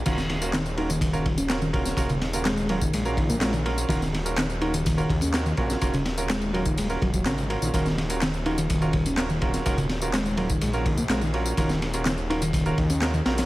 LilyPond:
<<
  \new Staff \with { instrumentName = "Grand piano" } { \time 4/4 \key ees \minor \tempo 4 = 125 <des' f' ges' bes'>16 r8 <des' f' ges' bes'>16 r8 <des' f' ges' bes'>16 r8 <des' f' ges' bes'>16 r8 <des' f' ges' bes'>16 r16 <des' f' ges' bes'>8 | <des' f' ges' bes'>16 r8 <des' f' ges' bes'>16 r8 <des' f' ges' bes'>16 r8 <des' f' ges' bes'>16 r8 <des' f' ges' bes'>16 r16 <des' f' ges' bes'>8 | <des' f' ges' bes'>16 r8 <des' f' ges' bes'>16 r8 <des' f' ges' bes'>16 r8 <des' f' ges' bes'>16 r8 <des' f' ges' bes'>16 r16 <des' f' ges' bes'>8 | <des' f' ges' bes'>16 r8 <des' f' ges' bes'>16 r8 <des' f' ges' bes'>16 r8 <des' f' ges' bes'>16 r8 <des' f' ges' bes'>16 r16 <des' f' ges' bes'>8 |
<des' f' ges' bes'>16 r8 <des' f' ges' bes'>16 r8 <des' f' ges' bes'>16 r8 <des' f' ges' bes'>16 r8 <des' f' ges' bes'>16 r16 <des' f' ges' bes'>8 | <des' f' ges' bes'>16 r8 <des' f' ges' bes'>16 r8 <des' f' ges' bes'>16 r8 <des' f' ges' bes'>16 r8 <des' f' ges' bes'>16 r16 <des' f' ges' bes'>8 | <des' f' ges' bes'>16 r8 <des' f' ges' bes'>16 r8 <des' f' ges' bes'>16 r8 <des' f' ges' bes'>16 r8 <des' f' ges' bes'>16 r16 <des' f' ges' bes'>8 | }
  \new Staff \with { instrumentName = "Picked electric bass" } { \clef bass \time 4/4 \key ees \minor ees8 ees16 r16 ees16 r16 ees'16 ees16 ees8. des'16 r16 ees16 r8 | r16 des16 r8 aes8 ges16 ees16 aes16 r16 ees16 bes16 aes16 ees16 r8 | ees8 ees16 r16 ees16 r16 ees'16 ees16 ees8. des'16 r16 ees16 r8 | r16 des16 r8 aes8 ges16 ees16 aes16 r16 ges16 ges16 des16 des16 r16 ees16 |
ees8 ees16 r16 ees16 r16 ees'16 ees16 ees8. des'16 r16 ees16 r8 | r16 des16 r8 aes8 ges16 ees16 aes16 r16 ees16 bes16 aes16 ees16 r8 | ees8 ees16 r16 ees16 r16 ees'16 ees16 ees8. des'16 r16 ees16 r8 | }
  \new Staff \with { instrumentName = "Detuned saw bass" } { \clef bass \time 4/4 \key ees \minor ees,,1 | ees,,2 bes,,2 | ees,,2~ ees,,8 ees,4 bes,,16 r16 | ees,,2~ ees,,8 ees,,8 aes,,8. bes,,16 |
ees,,1 | ees,,2 bes,,2 | ees,,2~ ees,,8 ees,4 bes,,16 r16 | }
  \new DrumStaff \with { instrumentName = "Drums" } \drummode { \time 4/4 <cymc bd cymr tamb>16 <sn tamb>16 <cymr sn>16 <cymr tamb>16 <hc cymr sn tamb>16 tamb16 cymr16 <cymr tamb>16 <bd cymr tamb>16 tamb16 <bd cymr>16 <cymr tamb>16 <hc cymr sn tamb>16 tamb16 <bd cymr>16 <sn tamb>16 | <bd cymr tamb>16 <cymr tamb>16 <cymr sn>16 tamb16 <hc cymr sn tamb>16 tamb16 cymr16 <bd tamb>16 <cymr tamb>16 tamb16 <bd cymr>16 <bd tamb>16 <hc cymr sn tamb>16 <cymr tamb>16 cymr16 tamb16 | <bd cymr tamb>16 <sn tamb>16 <cymr sn>16 <cymr tamb>16 <hc cymr sn tamb>16 tamb16 cymr16 <cymr tamb>16 <bd cymr tamb>16 tamb16 <bd cymr>16 <cymr tamb>16 <hc cymr sn tamb>16 tamb16 <bd cymr>16 <sn tamb>16 | <bd cymr tamb>16 <cymr tamb>16 <cymr sn>16 tamb16 <hc cymr sn tamb>16 tamb16 cymr16 <bd tamb>16 <cymr tamb>16 tamb16 <bd cymr>16 <bd tamb>16 <hc cymr sn tamb>16 <cymr tamb>16 cymr16 tamb16 |
<bd cymr tamb>16 <sn tamb>16 <cymr sn>16 <cymr tamb>16 <hc cymr sn tamb>16 tamb16 cymr16 <cymr tamb>16 <bd cymr tamb>16 tamb16 <bd cymr>16 <cymr tamb>16 <hc cymr sn tamb>16 tamb16 <bd cymr>16 <sn tamb>16 | <bd cymr tamb>16 <cymr tamb>16 <cymr sn>16 tamb16 <hc cymr sn tamb>16 tamb16 cymr16 <bd tamb>16 <cymr tamb>16 tamb16 <bd cymr>16 <bd tamb>16 <hc cymr sn tamb>16 <cymr tamb>16 cymr16 tamb16 | <bd cymr tamb>16 <sn tamb>16 <cymr sn>16 <cymr tamb>16 <hc cymr sn tamb>16 tamb16 cymr16 <cymr tamb>16 <bd cymr tamb>16 tamb16 <bd cymr>16 <cymr tamb>16 <hc cymr sn tamb>16 tamb16 <cymr sn>16 <cymr sn tamb>16 | }
>>